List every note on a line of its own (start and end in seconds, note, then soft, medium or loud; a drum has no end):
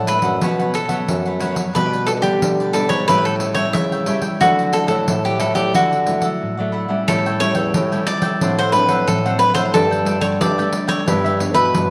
0.00 0.18 A2 medium
0.00 0.39 A2 medium
0.07 0.28 F#3 medium
0.07 0.28 A3 soft
0.07 0.24 D4 soft
0.07 0.28 D4 medium
0.07 0.24 A4 medium
0.07 0.71 B4 medium
0.07 0.23 D5 soft
0.07 0.22 F#5 soft
0.07 pandeiro medium
0.22 0.38 F#2 medium
0.22 0.41 A4 soft
0.22 0.40 D5 medium
0.22 0.40 F#5 medium
0.22 pandeiro medium
0.41 0.76 B2 loud
0.41 1.06 B2 medium
0.41 0.74 F#3 medium
0.41 0.74 B3 medium
0.41 0.74 C#4 medium
0.41 0.58 F#4 medium
0.41 0.58 B4 medium
0.41 0.58 C#5 medium
0.41 0.58 F#5 medium
0.41 pandeiro medium
0.59 0.88 B4 soft
0.59 0.89 C#5 soft
0.59 0.87 F#5 medium
0.59 pandeiro soft
0.74 1.38 A4 medium
0.74 pandeiro medium
0.89 1.36 F#3 medium
0.89 1.36 B3 medium
0.89 1.36 C#4 medium
0.89 1.23 B4 medium
0.89 1.23 C#5 medium
0.89 1.22 F#5 medium
0.89 pandeiro medium
1.08 1.66 F#2 medium
1.08 1.73 F#2 medium
1.08 pandeiro medium
1.26 1.39 B4 soft
1.26 1.39 C#5 soft
1.26 1.40 F#5 soft
1.26 pandeiro soft
1.40 1.70 F#3 medium
1.40 1.70 B3 medium
1.40 1.70 C#4 medium
1.40 1.56 F#4 medium
1.40 1.54 B4 medium
1.40 1.56 C#5 medium
1.40 1.53 F#5 medium
1.40 pandeiro medium
1.55 1.73 B4 soft
1.55 1.73 C#5 soft
1.55 1.72 F#5 medium
1.55 pandeiro medium
1.74 2.18 B2 medium
1.74 2.39 B2 medium
1.74 2.21 G3 medium
1.74 2.21 B3 medium
1.74 1.90 D4 medium
1.74 2.21 D4 medium
1.74 1.91 G4 medium
1.74 2.06 B4 medium
1.74 1.91 B4 medium
1.74 1.91 D5 medium
1.74 pandeiro medium
1.92 2.06 G4 soft
1.92 2.06 B4 soft
1.92 2.07 D5 soft
1.92 pandeiro soft
2.06 2.11 A4 medium
2.06 muted cavaquinho stroke soft
2.06 pandeiro medium
2.22 2.38 D3 medium
2.22 2.69 G3 medium
2.22 2.69 B3 medium
2.22 2.69 D4 medium
2.22 2.75 G4 medium
2.22 2.40 G4 medium
2.22 2.40 B4 medium
2.22 2.39 D5 medium
2.22 pandeiro medium
2.42 3.05 B2 medium
2.42 2.85 D3 medium
2.42 muted cavaquinho stroke soft
2.42 pandeiro medium
2.60 2.73 G4 soft
2.60 2.74 B4 soft
2.60 2.74 D5 soft
2.60 pandeiro soft
2.73 3.02 G3 medium
2.73 3.03 B3 medium
2.73 2.90 D4 soft
2.73 3.03 D4 medium
2.73 2.89 G4 soft
2.73 2.90 A4 medium
2.73 2.89 B4 medium
2.73 2.87 D5 medium
2.73 pandeiro medium
2.89 3.05 G#2 medium
2.89 3.07 G4 medium
2.89 3.06 B4 medium
2.89 3.07 C#5 medium
2.89 3.06 D5 medium
2.89 pandeiro soft
3.08 3.72 A2 medium
3.08 3.65 A2 loud
3.08 3.54 G3 medium
3.08 3.54 C#4 medium
3.08 3.54 E4 medium
3.08 3.24 G4 medium
3.08 3.24 A4 medium
3.08 3.24 B4 loud
3.08 3.25 C#5 medium
3.08 3.24 G5 medium
3.08 pandeiro medium
3.25 3.34 A4 medium
3.25 3.56 A4 soft
3.25 3.55 C#5 soft
3.25 3.54 G5 soft
3.25 pandeiro soft
3.40 pandeiro medium
3.54 4.02 G3 medium
3.54 4.02 C#4 medium
3.54 4.02 E4 medium
3.54 3.90 A4 medium
3.54 3.74 C#5 medium
3.54 3.89 C#5 medium
3.54 3.89 G5 medium
3.54 pandeiro medium
3.73 4.32 C#3 medium
3.73 4.39 E3 medium
3.73 4.21 E5 medium
3.73 pandeiro medium
3.92 4.06 A4 soft
3.92 4.06 C#5 soft
3.92 4.07 G5 soft
3.92 pandeiro soft
4.06 4.36 G3 medium
4.06 4.36 C#4 medium
4.06 4.36 E4 medium
4.06 4.23 G4 medium
4.06 4.22 A4 medium
4.06 4.21 C#5 medium
4.06 4.21 G5 medium
4.06 pandeiro medium
4.22 4.40 A4 soft
4.22 4.39 C#5 soft
4.22 4.39 G5 soft
4.22 pandeiro medium
4.40 4.84 D3 medium
4.40 5.06 D3 medium
4.40 4.87 F#3 medium
4.40 4.87 A3 medium
4.40 4.56 E4 medium
4.40 4.87 E4 medium
4.40 4.76 F#4 medium
4.40 4.57 A4 medium
4.40 4.57 D5 medium
4.40 4.57 F#5 medium
4.40 pandeiro medium
4.58 4.72 A4 soft
4.58 4.72 D5 soft
4.58 4.72 F#5 soft
4.58 pandeiro soft
4.72 4.87 A4 medium
4.72 muted cavaquinho stroke soft
4.72 pandeiro medium
4.87 5.04 A2 medium
4.87 5.35 F#3 medium
4.87 5.35 A3 medium
4.87 5.36 E4 medium
4.87 5.24 A4 medium
4.87 5.06 A4 medium
4.87 5.05 D5 medium
4.87 5.05 F#5 medium
4.87 pandeiro medium
5.07 5.72 A2 medium
5.07 5.51 A2 medium
5.07 muted cavaquinho stroke soft
5.07 pandeiro medium
5.25 5.40 G4 medium
5.25 5.38 A4 soft
5.25 5.39 D5 soft
5.25 5.39 F#5 soft
5.25 pandeiro soft
5.39 5.84 F#3 medium
5.39 5.84 A3 soft
5.39 5.56 E4 soft
5.39 5.84 E4 medium
5.39 5.55 A4 soft
5.39 5.55 A4 medium
5.39 5.54 D5 medium
5.39 5.53 F#5 medium
5.39 pandeiro medium
5.54 5.71 A2 medium
5.54 5.72 G4 medium
5.54 5.72 A4 medium
5.54 5.72 D5 medium
5.54 5.72 F#5 medium
5.54 pandeiro medium
5.73 6.32 D3 medium
5.73 6.38 D3 medium
5.73 5.90 E4 medium
5.73 6.71 F#4 medium
5.73 5.90 A4 medium
5.73 5.90 D5 medium
5.73 5.90 F#5 medium
5.73 pandeiro medium
5.91 6.22 A4 soft
5.91 6.20 D5 soft
5.91 6.19 F#5 soft
5.91 pandeiro soft
6.07 6.53 F#3 soft
6.07 6.53 A3 soft
6.07 6.53 E4 medium
6.07 pandeiro medium
6.21 6.56 A4 soft
6.21 6.55 D5 medium
6.21 6.55 F#5 medium
6.21 pandeiro medium
6.42 7.05 A2 soft
6.57 6.87 F#3 medium
6.57 6.87 A3 medium
6.57 6.87 E4 medium
6.57 6.71 A4 soft
6.57 6.72 D5 soft
6.57 6.73 F#5 soft
6.72 6.89 E4 medium
6.72 6.89 A4 medium
6.72 6.88 D5 medium
6.72 6.87 F#5 medium
6.88 7.39 G3 medium
6.88 7.40 C#4 medium
6.88 7.40 E4 medium
6.88 7.06 A4 soft
6.88 7.06 D5 soft
6.88 7.05 F#5 medium
7.08 7.51 A2 medium
7.08 7.72 A2 medium
7.08 7.23 G4 soft
7.08 7.39 A4 medium
7.08 7.24 A4 soft
7.08 7.24 C#5 medium
7.08 7.24 G5 medium
7.08 pandeiro medium
7.26 7.39 A4 medium
7.26 7.40 C#5 medium
7.26 7.40 G5 medium
7.26 pandeiro soft
7.40 7.86 G3 medium
7.40 7.86 C#4 medium
7.40 7.86 E4 medium
7.40 7.56 G4 soft
7.40 7.55 A4 soft
7.40 8.03 C#5 medium
7.40 7.55 C#5 medium
7.40 7.54 G5 medium
7.40 pandeiro medium
7.55 7.71 E2 medium
7.55 7.73 A4 medium
7.55 7.72 C#5 medium
7.55 7.72 G5 medium
7.55 pandeiro medium
7.74 8.03 A2 loud
7.74 8.38 E3 medium
7.74 7.90 G4 soft
7.74 7.90 A4 soft
7.74 7.90 C#5 medium
7.74 7.91 G5 medium
7.74 pandeiro medium
7.92 8.36 G3 medium
7.92 8.37 C#4 medium
7.92 8.37 E4 medium
7.92 8.23 A4 medium
7.92 8.22 C#5 medium
7.92 8.21 G5 medium
7.92 pandeiro soft
8.07 8.58 D5 loud
8.07 pandeiro medium
8.22 8.40 A4 medium
8.22 8.39 C#5 medium
8.22 8.39 G5 medium
8.22 pandeiro medium
8.41 9.04 A2 medium
8.41 8.84 A2 loud
8.41 8.61 F#3 medium
8.41 8.61 C4 medium
8.41 8.57 D4 soft
8.41 8.61 D4 medium
8.41 8.57 A4 medium
8.41 8.57 C5 medium
8.41 8.57 F#5 medium
8.41 pandeiro medium
8.58 8.72 A4 medium
8.58 8.72 C5 medium
8.58 8.73 F#5 medium
8.58 pandeiro soft
8.72 9.19 F#3 medium
8.72 9.19 C4 medium
8.72 9.19 D4 medium
8.72 9.08 B4 medium
8.72 muted cavaquinho stroke soft
8.72 pandeiro medium
8.88 9.46 A2 medium
8.88 9.23 A4 medium
8.88 9.22 C5 medium
8.88 9.22 F#5 medium
8.88 pandeiro medium
9.07 9.71 A2 medium
9.07 9.39 A4 medium
9.07 pandeiro medium
9.25 9.70 F#3 medium
9.25 9.70 C4 medium
9.25 9.70 D4 medium
9.25 9.38 A4 soft
9.25 9.38 C5 medium
9.25 9.38 F#5 medium
9.25 pandeiro soft
9.39 9.54 B4 medium
9.39 muted cavaquinho stroke soft
9.39 pandeiro medium
9.54 9.70 A2 medium
9.54 9.72 A4 medium
9.54 9.71 C5 loud
9.54 9.72 C5 medium
9.54 9.71 F#5 medium
9.54 pandeiro medium
9.73 10.37 G2 medium
9.73 10.17 G2 medium
9.73 10.02 G3 medium
9.73 10.02 A3 medium
9.73 9.89 D4 soft
9.73 10.03 D4 medium
9.73 10.25 A4 medium
9.73 9.89 A4 soft
9.73 9.90 D5 medium
9.73 9.90 G5 medium
9.73 pandeiro medium
9.91 10.05 A4 medium
9.91 10.05 D5 medium
9.91 10.06 G5 medium
9.91 pandeiro soft
10.05 10.51 G3 medium
10.05 10.51 A3 medium
10.05 10.22 D4 soft
10.05 10.52 D4 medium
10.05 10.21 A4 soft
10.05 10.21 D5 medium
10.05 10.19 G5 medium
10.05 pandeiro medium
10.21 10.37 D3 medium
10.21 10.39 A4 medium
10.21 10.26 C#5 medium
10.21 10.38 D5 medium
10.21 10.38 G5 medium
10.21 pandeiro medium
10.40 10.69 G2 loud
10.40 11.04 D3 medium
10.40 10.56 D4 soft
10.40 10.56 A4 medium
10.40 10.87 D5 medium
10.40 10.57 D5 soft
10.40 10.57 G5 medium
10.40 pandeiro medium
10.58 11.03 G3 medium
10.58 11.03 A3 medium
10.58 11.03 D4 medium
10.58 10.88 A4 medium
10.58 10.88 D5 medium
10.58 10.86 G5 medium
10.58 pandeiro soft
10.73 pandeiro medium
10.87 11.05 A4 medium
10.87 11.52 C#5 medium
10.87 11.05 D5 medium
10.87 11.04 G5 medium
10.87 pandeiro medium
11.06 11.56 G2 loud
11.06 11.71 G2 medium
11.06 11.27 E3 medium
11.06 11.27 B3 medium
11.06 11.22 D4 soft
11.06 11.27 D4 medium
11.06 11.22 G4 medium
11.06 11.23 B4 medium
11.06 11.23 E5 medium
11.06 pandeiro medium
11.24 11.38 G4 medium
11.24 11.39 B4 medium
11.24 11.39 E5 medium
11.24 pandeiro soft
11.39 11.85 E3 medium
11.39 11.85 B3 medium
11.39 11.85 D4 medium
11.39 muted cavaquinho stroke soft
11.39 pandeiro medium
11.54 11.90 B2 medium
11.54 11.89 G4 medium
11.54 11.90 B4 medium
11.54 11.88 B4 medium
11.54 11.88 E5 medium
11.54 pandeiro medium
11.74 11.90 G2 medium
11.74 pandeiro medium